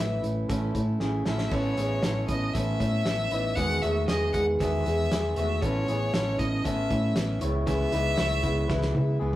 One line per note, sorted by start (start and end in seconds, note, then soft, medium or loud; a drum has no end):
0.00 0.19 A1 loud
0.00 0.23 E3 medium
0.00 0.23 A3 medium
0.00 0.22 C#4 medium
0.00 0.21 E4 medium
0.00 0.46 B4 medium
0.00 0.20 E5 loud
0.22 0.44 A1 medium
0.22 0.49 A3 medium
0.22 0.49 C#4 medium
0.22 0.48 E4 medium
0.22 closed hi-hat medium
0.49 0.70 A1 medium
0.49 0.75 A2 medium
0.49 0.75 E3 medium
0.49 0.75 A3 medium
0.49 0.74 C#4 medium
0.49 0.73 E4 loud
0.49 0.97 A4 medium
0.49 kick medium
0.49 snare soft
0.49 closed hi-hat medium
0.74 0.96 A2 medium
0.74 1.00 A3 soft
0.74 1.01 C#4 soft
0.74 1.00 E4 medium
0.74 kick medium
0.74 closed hi-hat medium
1.00 1.22 A1 medium
1.00 1.26 E3 medium
1.00 1.26 A3 medium
1.00 1.26 C#4 medium
1.00 1.25 E4 medium
1.00 1.25 G#4 medium
1.00 snare medium
1.25 1.48 A1 medium
1.25 1.51 A3 soft
1.25 1.51 C#4 soft
1.25 1.51 E4 medium
1.25 1.50 A4 medium
1.25 1.54 E5 medium
1.25 snare medium
1.38 snare medium
1.51 1.73 A1 loud
1.51 1.77 A2 medium
1.51 1.77 E3 medium
1.51 1.78 B3 medium
1.51 1.77 C#4 medium
1.51 1.76 E4 medium
1.51 1.77 A4 medium
1.51 2.28 C#5 loud
1.51 kick loud
1.51 crash medium
1.77 1.99 A1 medium
1.77 2.02 B3 soft
1.77 2.03 C#4 soft
1.77 2.03 E4 soft
1.77 2.03 G#4 medium
1.77 closed hi-hat medium
2.03 2.25 A1 medium
2.03 2.29 E3 medium
2.03 2.29 B3 medium
2.03 2.29 C#4 medium
2.03 2.27 E4 medium
2.03 2.52 A4 medium
2.03 snare loud
2.03 closed hi-hat medium
2.28 2.50 A1 medium
2.28 2.54 B3 soft
2.28 2.55 C#4 medium
2.28 2.54 E4 medium
2.28 2.55 D#5 medium
2.28 kick medium
2.28 closed hi-hat medium
2.54 2.76 A1 medium
2.54 2.80 A2 medium
2.54 2.80 E3 medium
2.54 2.81 B3 medium
2.54 2.80 C#4 medium
2.54 2.78 E4 medium
2.54 3.28 A4 medium
2.54 3.57 E5 loud
2.54 kick medium
2.54 snare soft
2.54 closed hi-hat medium
2.80 3.01 A2 medium
2.80 3.05 B3 soft
2.80 3.06 C#4 soft
2.80 3.06 E4 soft
2.80 kick medium
2.80 closed hi-hat medium
3.05 3.27 A1 medium
3.05 3.31 E3 medium
3.05 3.32 B3 medium
3.05 3.32 C#4 medium
3.05 3.31 E4 medium
3.05 snare loud
3.05 closed hi-hat medium
3.31 3.53 A1 medium
3.31 3.58 B3 soft
3.31 3.58 C#4 soft
3.31 3.58 D#4 medium
3.31 3.57 E4 medium
3.31 3.57 B4 medium
3.31 closed hi-hat medium
3.56 3.78 E1 loud
3.56 3.83 E2 medium
3.56 3.83 B2 medium
3.56 3.83 D#3 medium
3.56 3.84 G#3 medium
3.56 3.82 B3 medium
3.56 3.82 G#4 medium
3.56 3.84 F#5 loud
3.56 kick loud
3.56 closed hi-hat medium
3.82 4.04 E1 medium
3.82 4.08 D#3 soft
3.82 4.09 G#3 soft
3.82 4.09 A3 medium
3.82 4.09 B3 soft
3.82 4.09 F#4 medium
3.82 4.09 G#4 medium
3.82 4.08 E5 medium
3.82 closed hi-hat medium
4.08 4.30 E1 loud
4.08 4.35 D#3 medium
4.08 4.35 G#3 medium
4.08 4.35 B3 medium
4.08 4.32 D#5 medium
4.08 snare loud
4.08 closed hi-hat medium
4.12 4.34 G#4 medium
4.33 4.55 E1 loud
4.33 4.60 G#3 medium
4.33 4.61 B3 medium
4.33 4.60 G#4 medium
4.33 4.45 F#5 medium
4.33 kick medium
4.33 closed hi-hat medium
4.38 4.60 D#3 soft
4.60 4.82 E1 medium
4.60 4.86 E2 medium
4.60 4.86 B2 medium
4.60 4.86 D#3 medium
4.60 4.86 G#3 medium
4.60 4.86 B3 medium
4.60 4.85 G#4 medium
4.60 5.33 E5 loud
4.60 kick medium
4.60 snare soft
4.60 closed hi-hat medium
4.86 5.07 E2 medium
4.86 5.10 D#3 soft
4.86 5.11 G#3 soft
4.86 5.12 B3 soft
4.86 5.12 G#4 soft
4.86 closed hi-hat medium
5.11 5.33 E1 loud
5.11 5.37 D#3 medium
5.11 5.37 G#3 medium
5.11 5.37 B3 medium
5.11 5.36 G#4 medium
5.11 snare loud
5.11 closed hi-hat medium
5.36 5.58 E1 medium
5.36 5.63 D#3 soft
5.36 5.63 G#3 soft
5.36 5.63 A3 medium
5.36 5.62 B3 soft
5.36 5.62 F#4 medium
5.36 5.63 G#4 soft
5.36 5.63 E5 medium
5.36 closed hi-hat medium
5.62 5.84 A1 loud
5.62 5.88 A2 medium
5.62 5.88 E3 medium
5.62 5.88 B3 medium
5.62 5.87 C#4 medium
5.62 5.86 E4 medium
5.62 5.88 A4 medium
5.62 6.40 C#5 loud
5.62 kick loud
5.62 closed hi-hat medium
5.87 6.10 A1 medium
5.87 6.13 B3 soft
5.87 6.14 C#4 soft
5.87 6.13 E4 soft
5.87 6.13 G#4 medium
5.87 closed hi-hat medium
6.13 6.35 A1 medium
6.13 6.39 E3 medium
6.13 6.40 B3 medium
6.13 6.39 C#4 medium
6.13 6.37 E4 medium
6.13 6.62 A4 medium
6.13 snare loud
6.13 closed hi-hat medium
6.38 6.61 A1 loud
6.38 6.64 B3 soft
6.38 6.64 C#4 medium
6.38 6.64 E4 medium
6.38 6.66 D#5 medium
6.38 kick medium
6.38 closed hi-hat medium
6.64 6.86 A1 medium
6.64 6.90 A2 medium
6.64 6.90 E3 medium
6.64 6.91 B3 medium
6.64 6.90 C#4 medium
6.64 6.89 E4 medium
6.64 7.38 A4 medium
6.64 7.42 E5 medium
6.64 kick medium
6.64 closed hi-hat medium
6.90 7.12 A2 medium
6.90 7.15 B3 soft
6.90 7.15 C#4 soft
6.90 7.16 E4 medium
6.90 kick medium
6.90 closed hi-hat medium
7.15 7.38 A1 loud
7.15 7.41 E3 medium
7.15 7.40 B3 medium
7.15 7.41 C#4 medium
7.15 7.39 E4 medium
7.15 snare loud
7.15 closed hi-hat medium
7.40 7.84 C#2 loud
7.40 7.65 G#3 soft
7.40 7.66 B3 soft
7.40 7.66 E4 medium
7.40 7.67 C#5 medium
7.40 closed hi-hat medium
7.66 7.92 C#3 medium
7.66 7.92 E3 medium
7.66 7.92 G#3 medium
7.66 7.92 B3 medium
7.66 7.90 E4 medium
7.66 7.93 G#4 medium
7.66 9.16 E5 loud
7.66 kick loud
7.66 closed hi-hat medium
7.92 8.14 C#2 medium
7.92 8.17 G#3 soft
7.92 8.18 B3 soft
7.92 8.18 D#4 medium
7.92 8.18 E4 medium
7.92 8.18 B4 medium
7.92 closed hi-hat medium
8.17 8.39 C#2 loud
8.17 8.43 E3 medium
8.17 8.44 G#3 medium
8.17 8.42 B3 medium
8.17 8.41 E4 medium
8.17 8.66 C#5 medium
8.17 snare loud
8.17 closed hi-hat medium
8.42 8.65 C#2 medium
8.42 8.68 G#3 medium
8.42 8.69 B3 medium
8.42 8.69 E4 medium
8.42 kick medium
8.42 closed hi-hat medium
8.68 8.90 C#2 medium
8.68 8.94 C#3 medium
8.68 8.95 E3 medium
8.68 8.95 G#3 medium
8.68 8.95 B3 medium
8.68 8.93 E4 loud
8.68 9.17 B4 medium
8.68 kick loud
8.68 snare medium
8.82 snare medium
8.95 9.16 C#3 medium
8.95 9.20 G#3 soft
8.95 9.20 B3 soft
8.95 9.20 E4 medium
8.95 high tom medium
9.20 9.36 C#2 medium
9.20 9.36 E3 medium
9.20 9.36 G#3 medium
9.20 9.36 B3 medium
9.20 9.36 E4 medium
9.20 9.36 G#4 medium